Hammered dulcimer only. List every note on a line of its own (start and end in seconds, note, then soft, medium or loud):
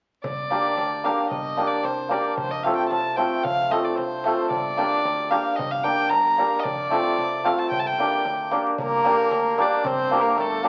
0.51 0.67 A#3 medium
0.51 0.67 D4 medium
0.51 0.67 G4 medium
0.51 0.67 A#4 medium
1.04 1.20 A#3 medium
1.04 1.20 D4 medium
1.04 1.21 G4 medium
1.04 1.21 A#4 medium
1.57 1.73 A#3 medium
1.57 1.74 D4 medium
1.57 1.74 G4 medium
1.57 1.74 A#4 medium
2.09 2.26 A#3 medium
2.09 2.27 D4 soft
2.09 2.27 G4 medium
2.09 2.27 A#4 medium
2.64 2.81 A3 medium
2.64 2.81 C4 medium
2.64 2.81 F4 medium
2.64 2.82 A4 medium
3.17 3.33 A3 medium
3.17 3.34 C4 medium
3.17 3.34 F4 medium
3.17 3.34 A4 medium
3.70 3.87 A3 medium
3.70 3.88 C4 medium
3.70 3.88 F4 medium
3.70 3.88 A4 medium
4.25 4.41 A3 medium
4.25 4.41 C4 soft
4.25 4.42 F4 medium
4.25 4.42 A4 medium
4.77 4.94 A#3 medium
4.77 4.95 D4 medium
4.77 4.95 G4 medium
4.77 4.95 A#4 medium
5.31 5.47 A#3 medium
5.31 5.48 D4 medium
5.31 5.48 G4 medium
5.31 5.48 A#4 medium
5.84 6.01 A#3 medium
5.84 6.01 D4 medium
5.84 6.01 G4 medium
5.84 6.02 A#4 medium
6.38 6.54 A#3 medium
6.38 6.55 D4 medium
6.38 6.55 G4 medium
6.38 6.55 A#4 medium
6.90 7.07 A3 medium
6.90 7.08 C4 medium
6.90 7.08 F4 medium
6.90 7.08 A4 medium
7.44 7.61 A3 medium
7.44 7.61 C4 medium
7.44 7.61 F4 medium
7.44 7.62 A4 medium
7.99 8.15 A#3 medium
7.99 8.15 D4 medium
7.99 8.16 G4 soft
7.99 8.16 A#4 medium
8.51 8.68 A#3 medium
8.51 8.68 D4 medium
8.51 8.69 G4 soft
8.51 8.69 A#4 medium
9.04 9.21 A#3 medium
9.04 9.21 D4 medium
9.04 9.22 G4 medium
9.04 9.22 A#4 medium
9.58 9.74 A#3 medium
9.58 9.75 D4 medium
9.58 9.75 G4 medium
9.58 9.75 A#4 medium
10.11 10.27 A#3 medium
10.11 10.27 D4 medium
10.11 10.28 G4 medium
10.11 10.28 A#4 medium
10.63 10.69 A#3 medium
10.63 10.69 D4 medium
10.63 10.69 G4 medium
10.63 10.69 A#4 medium